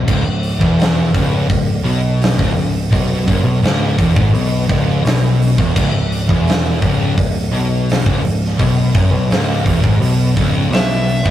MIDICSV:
0, 0, Header, 1, 5, 480
1, 0, Start_track
1, 0, Key_signature, 4, "minor"
1, 0, Tempo, 709220
1, 54, Time_signature, 4, 2, 24, 8
1, 7651, End_track
2, 0, Start_track
2, 0, Title_t, "Lead electric guitar"
2, 0, Program_c, 0, 29
2, 7267, Note_on_c, 0, 76, 99
2, 7651, Note_off_c, 0, 76, 0
2, 7651, End_track
3, 0, Start_track
3, 0, Title_t, "Distorted electric guitar"
3, 0, Program_c, 1, 30
3, 46, Note_on_c, 1, 37, 112
3, 162, Note_off_c, 1, 37, 0
3, 170, Note_on_c, 1, 37, 73
3, 364, Note_off_c, 1, 37, 0
3, 407, Note_on_c, 1, 40, 112
3, 762, Note_off_c, 1, 40, 0
3, 765, Note_on_c, 1, 37, 102
3, 996, Note_off_c, 1, 37, 0
3, 1004, Note_on_c, 1, 37, 79
3, 1200, Note_off_c, 1, 37, 0
3, 1246, Note_on_c, 1, 47, 109
3, 1601, Note_off_c, 1, 47, 0
3, 1609, Note_on_c, 1, 37, 107
3, 1723, Note_off_c, 1, 37, 0
3, 1730, Note_on_c, 1, 37, 81
3, 1922, Note_off_c, 1, 37, 0
3, 1966, Note_on_c, 1, 47, 113
3, 2201, Note_off_c, 1, 47, 0
3, 2214, Note_on_c, 1, 42, 109
3, 2325, Note_off_c, 1, 42, 0
3, 2328, Note_on_c, 1, 47, 113
3, 2442, Note_off_c, 1, 47, 0
3, 2450, Note_on_c, 1, 37, 114
3, 2683, Note_off_c, 1, 37, 0
3, 2695, Note_on_c, 1, 40, 105
3, 2805, Note_off_c, 1, 40, 0
3, 2815, Note_on_c, 1, 44, 98
3, 2925, Note_off_c, 1, 44, 0
3, 2937, Note_on_c, 1, 47, 97
3, 3166, Note_off_c, 1, 47, 0
3, 3175, Note_on_c, 1, 37, 93
3, 3404, Note_off_c, 1, 37, 0
3, 3407, Note_on_c, 1, 47, 115
3, 3761, Note_off_c, 1, 47, 0
3, 3774, Note_on_c, 1, 40, 98
3, 3884, Note_off_c, 1, 40, 0
3, 3892, Note_on_c, 1, 37, 115
3, 4003, Note_off_c, 1, 37, 0
3, 4018, Note_on_c, 1, 37, 77
3, 4205, Note_off_c, 1, 37, 0
3, 4256, Note_on_c, 1, 40, 114
3, 4605, Note_off_c, 1, 40, 0
3, 4616, Note_on_c, 1, 37, 109
3, 4840, Note_off_c, 1, 37, 0
3, 4848, Note_on_c, 1, 37, 72
3, 5041, Note_off_c, 1, 37, 0
3, 5094, Note_on_c, 1, 47, 92
3, 5444, Note_off_c, 1, 47, 0
3, 5447, Note_on_c, 1, 37, 104
3, 5561, Note_off_c, 1, 37, 0
3, 5574, Note_on_c, 1, 37, 77
3, 5764, Note_off_c, 1, 37, 0
3, 5815, Note_on_c, 1, 47, 116
3, 6046, Note_off_c, 1, 47, 0
3, 6060, Note_on_c, 1, 42, 115
3, 6168, Note_off_c, 1, 42, 0
3, 6171, Note_on_c, 1, 47, 110
3, 6284, Note_off_c, 1, 47, 0
3, 6300, Note_on_c, 1, 37, 108
3, 6529, Note_off_c, 1, 37, 0
3, 6535, Note_on_c, 1, 40, 93
3, 6646, Note_off_c, 1, 40, 0
3, 6654, Note_on_c, 1, 44, 101
3, 6766, Note_off_c, 1, 44, 0
3, 6772, Note_on_c, 1, 47, 117
3, 7006, Note_off_c, 1, 47, 0
3, 7011, Note_on_c, 1, 37, 96
3, 7246, Note_off_c, 1, 37, 0
3, 7253, Note_on_c, 1, 47, 92
3, 7603, Note_off_c, 1, 47, 0
3, 7606, Note_on_c, 1, 40, 95
3, 7651, Note_off_c, 1, 40, 0
3, 7651, End_track
4, 0, Start_track
4, 0, Title_t, "Picked electric bass"
4, 0, Program_c, 2, 34
4, 55, Note_on_c, 2, 25, 101
4, 166, Note_off_c, 2, 25, 0
4, 174, Note_on_c, 2, 25, 83
4, 397, Note_off_c, 2, 25, 0
4, 414, Note_on_c, 2, 28, 98
4, 748, Note_off_c, 2, 28, 0
4, 775, Note_on_c, 2, 25, 89
4, 997, Note_off_c, 2, 25, 0
4, 1014, Note_on_c, 2, 25, 76
4, 1236, Note_off_c, 2, 25, 0
4, 1247, Note_on_c, 2, 35, 94
4, 1583, Note_off_c, 2, 35, 0
4, 1618, Note_on_c, 2, 25, 93
4, 1721, Note_off_c, 2, 25, 0
4, 1725, Note_on_c, 2, 25, 98
4, 1951, Note_off_c, 2, 25, 0
4, 1983, Note_on_c, 2, 35, 106
4, 2200, Note_off_c, 2, 35, 0
4, 2218, Note_on_c, 2, 30, 95
4, 2323, Note_off_c, 2, 30, 0
4, 2327, Note_on_c, 2, 35, 102
4, 2440, Note_off_c, 2, 35, 0
4, 2448, Note_on_c, 2, 25, 100
4, 2672, Note_off_c, 2, 25, 0
4, 2698, Note_on_c, 2, 28, 90
4, 2806, Note_off_c, 2, 28, 0
4, 2817, Note_on_c, 2, 32, 93
4, 2925, Note_off_c, 2, 32, 0
4, 2934, Note_on_c, 2, 35, 101
4, 3155, Note_off_c, 2, 35, 0
4, 3177, Note_on_c, 2, 25, 101
4, 3396, Note_off_c, 2, 25, 0
4, 3410, Note_on_c, 2, 35, 98
4, 3744, Note_off_c, 2, 35, 0
4, 3782, Note_on_c, 2, 28, 96
4, 3888, Note_off_c, 2, 28, 0
4, 3897, Note_on_c, 2, 25, 95
4, 4005, Note_off_c, 2, 25, 0
4, 4015, Note_on_c, 2, 25, 84
4, 4235, Note_off_c, 2, 25, 0
4, 4258, Note_on_c, 2, 28, 104
4, 4588, Note_off_c, 2, 28, 0
4, 4619, Note_on_c, 2, 25, 103
4, 4837, Note_off_c, 2, 25, 0
4, 4861, Note_on_c, 2, 25, 76
4, 5079, Note_off_c, 2, 25, 0
4, 5089, Note_on_c, 2, 35, 98
4, 5424, Note_off_c, 2, 35, 0
4, 5459, Note_on_c, 2, 25, 101
4, 5563, Note_off_c, 2, 25, 0
4, 5568, Note_on_c, 2, 25, 85
4, 5792, Note_off_c, 2, 25, 0
4, 5817, Note_on_c, 2, 35, 100
4, 6037, Note_off_c, 2, 35, 0
4, 6058, Note_on_c, 2, 30, 104
4, 6161, Note_off_c, 2, 30, 0
4, 6165, Note_on_c, 2, 35, 103
4, 6280, Note_off_c, 2, 35, 0
4, 6287, Note_on_c, 2, 25, 98
4, 6513, Note_off_c, 2, 25, 0
4, 6536, Note_on_c, 2, 28, 85
4, 6646, Note_off_c, 2, 28, 0
4, 6656, Note_on_c, 2, 32, 102
4, 6766, Note_off_c, 2, 32, 0
4, 6770, Note_on_c, 2, 35, 102
4, 6995, Note_off_c, 2, 35, 0
4, 7019, Note_on_c, 2, 25, 96
4, 7241, Note_off_c, 2, 25, 0
4, 7249, Note_on_c, 2, 35, 99
4, 7588, Note_off_c, 2, 35, 0
4, 7620, Note_on_c, 2, 28, 97
4, 7651, Note_off_c, 2, 28, 0
4, 7651, End_track
5, 0, Start_track
5, 0, Title_t, "Drums"
5, 53, Note_on_c, 9, 36, 102
5, 53, Note_on_c, 9, 49, 90
5, 121, Note_off_c, 9, 36, 0
5, 121, Note_off_c, 9, 49, 0
5, 291, Note_on_c, 9, 46, 58
5, 359, Note_off_c, 9, 46, 0
5, 413, Note_on_c, 9, 36, 101
5, 481, Note_off_c, 9, 36, 0
5, 537, Note_on_c, 9, 46, 79
5, 553, Note_on_c, 9, 38, 122
5, 605, Note_off_c, 9, 46, 0
5, 620, Note_off_c, 9, 38, 0
5, 775, Note_on_c, 9, 36, 105
5, 778, Note_on_c, 9, 46, 61
5, 843, Note_off_c, 9, 36, 0
5, 846, Note_off_c, 9, 46, 0
5, 1014, Note_on_c, 9, 36, 102
5, 1014, Note_on_c, 9, 46, 79
5, 1082, Note_off_c, 9, 36, 0
5, 1082, Note_off_c, 9, 46, 0
5, 1258, Note_on_c, 9, 46, 53
5, 1326, Note_off_c, 9, 46, 0
5, 1500, Note_on_c, 9, 46, 86
5, 1516, Note_on_c, 9, 38, 125
5, 1568, Note_off_c, 9, 46, 0
5, 1583, Note_off_c, 9, 38, 0
5, 1618, Note_on_c, 9, 36, 115
5, 1686, Note_off_c, 9, 36, 0
5, 1748, Note_on_c, 9, 46, 70
5, 1816, Note_off_c, 9, 46, 0
5, 1980, Note_on_c, 9, 36, 107
5, 1991, Note_on_c, 9, 46, 93
5, 2048, Note_off_c, 9, 36, 0
5, 2058, Note_off_c, 9, 46, 0
5, 2219, Note_on_c, 9, 36, 97
5, 2226, Note_on_c, 9, 46, 63
5, 2286, Note_off_c, 9, 36, 0
5, 2294, Note_off_c, 9, 46, 0
5, 2459, Note_on_c, 9, 46, 77
5, 2474, Note_on_c, 9, 38, 120
5, 2526, Note_off_c, 9, 46, 0
5, 2542, Note_off_c, 9, 38, 0
5, 2697, Note_on_c, 9, 36, 105
5, 2699, Note_on_c, 9, 46, 67
5, 2765, Note_off_c, 9, 36, 0
5, 2766, Note_off_c, 9, 46, 0
5, 2818, Note_on_c, 9, 36, 103
5, 2886, Note_off_c, 9, 36, 0
5, 2942, Note_on_c, 9, 46, 85
5, 3010, Note_off_c, 9, 46, 0
5, 3177, Note_on_c, 9, 36, 102
5, 3181, Note_on_c, 9, 46, 53
5, 3245, Note_off_c, 9, 36, 0
5, 3249, Note_off_c, 9, 46, 0
5, 3418, Note_on_c, 9, 46, 85
5, 3433, Note_on_c, 9, 38, 123
5, 3486, Note_off_c, 9, 46, 0
5, 3501, Note_off_c, 9, 38, 0
5, 3667, Note_on_c, 9, 46, 68
5, 3735, Note_off_c, 9, 46, 0
5, 3779, Note_on_c, 9, 36, 110
5, 3847, Note_off_c, 9, 36, 0
5, 3899, Note_on_c, 9, 36, 115
5, 3903, Note_on_c, 9, 49, 95
5, 3967, Note_off_c, 9, 36, 0
5, 3971, Note_off_c, 9, 49, 0
5, 4143, Note_on_c, 9, 46, 55
5, 4211, Note_off_c, 9, 46, 0
5, 4258, Note_on_c, 9, 36, 93
5, 4325, Note_off_c, 9, 36, 0
5, 4382, Note_on_c, 9, 46, 81
5, 4398, Note_on_c, 9, 38, 112
5, 4450, Note_off_c, 9, 46, 0
5, 4465, Note_off_c, 9, 38, 0
5, 4617, Note_on_c, 9, 36, 100
5, 4625, Note_on_c, 9, 46, 52
5, 4685, Note_off_c, 9, 36, 0
5, 4692, Note_off_c, 9, 46, 0
5, 4857, Note_on_c, 9, 36, 101
5, 4866, Note_on_c, 9, 46, 87
5, 4925, Note_off_c, 9, 36, 0
5, 4933, Note_off_c, 9, 46, 0
5, 5105, Note_on_c, 9, 46, 54
5, 5173, Note_off_c, 9, 46, 0
5, 5343, Note_on_c, 9, 46, 88
5, 5358, Note_on_c, 9, 38, 111
5, 5410, Note_off_c, 9, 46, 0
5, 5426, Note_off_c, 9, 38, 0
5, 5456, Note_on_c, 9, 36, 110
5, 5524, Note_off_c, 9, 36, 0
5, 5581, Note_on_c, 9, 46, 66
5, 5649, Note_off_c, 9, 46, 0
5, 5719, Note_on_c, 9, 38, 32
5, 5786, Note_off_c, 9, 38, 0
5, 5817, Note_on_c, 9, 36, 107
5, 5823, Note_on_c, 9, 46, 89
5, 5884, Note_off_c, 9, 36, 0
5, 5891, Note_off_c, 9, 46, 0
5, 6056, Note_on_c, 9, 36, 120
5, 6060, Note_on_c, 9, 46, 65
5, 6124, Note_off_c, 9, 36, 0
5, 6128, Note_off_c, 9, 46, 0
5, 6295, Note_on_c, 9, 46, 85
5, 6310, Note_on_c, 9, 38, 112
5, 6362, Note_off_c, 9, 46, 0
5, 6378, Note_off_c, 9, 38, 0
5, 6537, Note_on_c, 9, 36, 96
5, 6539, Note_on_c, 9, 46, 68
5, 6605, Note_off_c, 9, 36, 0
5, 6607, Note_off_c, 9, 46, 0
5, 6658, Note_on_c, 9, 36, 90
5, 6726, Note_off_c, 9, 36, 0
5, 6781, Note_on_c, 9, 46, 96
5, 6849, Note_off_c, 9, 46, 0
5, 7018, Note_on_c, 9, 36, 97
5, 7020, Note_on_c, 9, 46, 54
5, 7085, Note_off_c, 9, 36, 0
5, 7088, Note_off_c, 9, 46, 0
5, 7258, Note_on_c, 9, 46, 90
5, 7274, Note_on_c, 9, 38, 120
5, 7326, Note_off_c, 9, 46, 0
5, 7342, Note_off_c, 9, 38, 0
5, 7500, Note_on_c, 9, 46, 62
5, 7568, Note_off_c, 9, 46, 0
5, 7618, Note_on_c, 9, 36, 103
5, 7651, Note_off_c, 9, 36, 0
5, 7651, End_track
0, 0, End_of_file